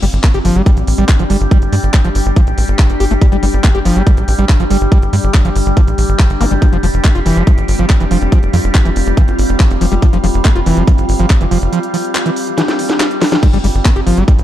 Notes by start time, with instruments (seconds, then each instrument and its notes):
Already playing: synth drone G3 G4, ambient pad C4 D4 F4 F5
0.02 analog synth bass G1, acid bass G3, open hi-hat
0.07 ambient pad G4
0.13 analog synth bass G1, closed hi-hat
0.24 acid bass A#3, kick, clap, closed hi-hat
0.34 analog synth bass G1, acid bass G4, ambient pad G5, closed hi-hat
0.45 analog synth bass G1, acid bass F3, open hi-hat
0.56 analog synth bass G1, acid bass G3, closed hi-hat
0.66 acid bass G3, kick, closed hi-hat
0.77 analog synth bass A1, closed hi-hat
0.87 analog synth bass A1, open hi-hat
0.98 analog synth bass A1, acid bass G3, closed hi-hat
1.09 kick, clap, closed hi-hat
1.19 analog synth bass G1, acid bass F3, closed hi-hat
1.30 analog synth bass G1, acid bass G3, open hi-hat
1.41 analog synth bass G1, closed hi-hat
1.51 acid bass G3, kick, closed hi-hat
1.62 analog synth bass G1, closed hi-hat
1.73 analog synth bass G2, acid bass G3, open hi-hat
1.83 analog synth bass G1, closed hi-hat
1.94 kick, clap, closed hi-hat
2.04 analog synth bass G1, acid bass F3, closed hi-hat
2.15 analog synth bass G1, open hi-hat
2.26 analog synth bass G1, closed hi-hat
2.36 acid bass F3, kick, closed hi-hat
2.47 analog synth bass A1, closed hi-hat
2.58 analog synth bass A1, open hi-hat
2.68 analog synth bass G1, closed hi-hat
2.79 kick, clap, closed hi-hat
2.90 analog synth bass G1, closed hi-hat
3.00 analog synth bass G1, acid bass G4, open hi-hat
3.11 analog synth bass G1, acid bass A3, closed hi-hat
3.21 acid bass G3, kick, closed hi-hat
3.32 analog synth bass G1, acid bass G3, closed hi-hat
3.43 analog synth bass G1, acid bass G3, open hi-hat
3.53 analog synth bass G1, closed hi-hat
3.64 acid bass A#3, kick, clap, closed hi-hat
3.75 analog synth bass G1, acid bass G4, closed hi-hat
3.85 analog synth bass G1, acid bass F3, open hi-hat
3.96 analog synth bass G1, acid bass G3, closed hi-hat
4.07 acid bass G3, kick, closed hi-hat
4.17 analog synth bass A1, closed hi-hat
4.28 analog synth bass A1, open hi-hat
4.38 analog synth bass A1, acid bass G3, closed hi-hat
4.49 kick, clap, closed hi-hat
4.60 analog synth bass G1, acid bass F3, closed hi-hat
4.70 analog synth bass G1, acid bass G3, open hi-hat
4.81 analog synth bass G1, closed hi-hat
4.92 acid bass G3, kick, closed hi-hat
5.02 analog synth bass G1, closed hi-hat
5.13 analog synth bass G2, acid bass G3, open hi-hat
5.24 analog synth bass G1, closed hi-hat
5.34 kick, clap, closed hi-hat
5.45 analog synth bass G1, acid bass F3, closed hi-hat
5.56 analog synth bass G1, open hi-hat
5.66 analog synth bass G1, closed hi-hat
5.77 acid bass F3, kick, closed hi-hat
5.87 analog synth bass A1, closed hi-hat
5.98 analog synth bass A1, open hi-hat
6.09 analog synth bass G1, closed hi-hat
6.19 kick, clap, closed hi-hat
6.30 analog synth bass G1, closed hi-hat
6.41 analog synth bass G1, acid bass A#3, open hi-hat, zap
6.51 analog synth bass G1, acid bass G3, closed hi-hat
6.62 acid bass F3, ambient pad C4, kick, closed hi-hat
6.73 analog synth bass F1, acid bass F3, closed hi-hat
6.83 analog synth bass F1, acid bass F3, ambient pad F4, open hi-hat
6.94 analog synth bass F1, closed hi-hat
7.04 acid bass A3, kick, clap, closed hi-hat
7.15 analog synth bass F1, acid bass F4, closed hi-hat
7.26 analog synth bass F1, acid bass E3, open hi-hat
7.36 analog synth bass F1, acid bass F3, ambient pad F5, closed hi-hat
7.47 acid bass F3, kick, closed hi-hat
7.58 analog synth bass G1, closed hi-hat
7.68 analog synth bass G1, open hi-hat
7.79 analog synth bass G1, acid bass F3, closed hi-hat
7.90 kick, clap, closed hi-hat
8.00 analog synth bass F1, acid bass E3, closed hi-hat
8.11 analog synth bass F1, acid bass F3, open hi-hat
8.21 analog synth bass F1, closed hi-hat
8.32 acid bass F3, kick, closed hi-hat
8.43 analog synth bass F1, closed hi-hat
8.53 analog synth bass F2, acid bass F3, open hi-hat
8.64 analog synth bass F1, closed hi-hat
8.75 kick, clap, closed hi-hat
8.85 analog synth bass F1, acid bass E3, closed hi-hat
8.96 analog synth bass F1, open hi-hat
9.07 analog synth bass F1, closed hi-hat
9.17 acid bass E3, kick, closed hi-hat
9.28 analog synth bass G1, closed hi-hat
9.38 analog synth bass G1, open hi-hat
9.49 analog synth bass F1, closed hi-hat
9.60 kick, clap, closed hi-hat
9.70 analog synth bass F1, closed hi-hat
9.81 analog synth bass F1, acid bass F3, open hi-hat
9.92 analog synth bass F1, acid bass G3, closed hi-hat
10.02 acid bass F3, kick, closed hi-hat
10.13 analog synth bass F1, acid bass F3, closed hi-hat
10.24 analog synth bass F1, acid bass F3, open hi-hat
10.34 analog synth bass F1, closed hi-hat
10.45 acid bass A3, kick, clap, closed hi-hat
10.56 analog synth bass F1, acid bass F4, closed hi-hat
10.66 analog synth bass F1, acid bass E3, open hi-hat
10.77 analog synth bass F1, acid bass F3, closed hi-hat
10.87 acid bass F3, kick, closed hi-hat
10.98 analog synth bass G1, closed hi-hat
11.09 analog synth bass G1, open hi-hat
11.19 analog synth bass G1, acid bass F3, closed hi-hat
11.30 kick, clap, closed hi-hat
11.41 analog synth bass F1, acid bass E3, closed hi-hat
11.51 analog synth bass F1, acid bass F3, open hi-hat
11.62 analog synth bass F1, closed hi-hat
11.73 acid bass F3, closed hi-hat
11.83 closed hi-hat
11.94 acid bass F3, open hi-hat
12.05 closed hi-hat
12.15 clap, closed hi-hat
12.26 acid bass E3, closed hi-hat
12.36 open hi-hat
12.47 closed hi-hat
12.58 acid bass E3, snare, closed hi-hat
12.68 snare, closed hi-hat
12.79 open hi-hat
12.90 snare, closed hi-hat
13.00 snare, clap, closed hi-hat
13.11 closed hi-hat
13.21 acid bass F3, snare, open hi-hat
13.32 acid bass F3, snare, closed hi-hat
13.43 acid bass G3, synth drone G3 G4, ambient pad D4, kick, closed hi-hat, crash
13.53 analog synth bass G1, acid bass G3, closed hi-hat
13.64 analog synth bass G1, acid bass G3, open hi-hat
13.70 ambient pad G4
13.75 analog synth bass G1, closed hi-hat
13.85 acid bass A#3, kick, clap, closed hi-hat
13.96 analog synth bass G1, acid bass G4, closed hi-hat
14.07 analog synth bass G1, acid bass F3, open hi-hat
14.17 analog synth bass G1, acid bass G3, ambient pad G5, closed hi-hat
14.28 acid bass G3, kick, closed hi-hat
14.39 analog synth bass A1, closed hi-hat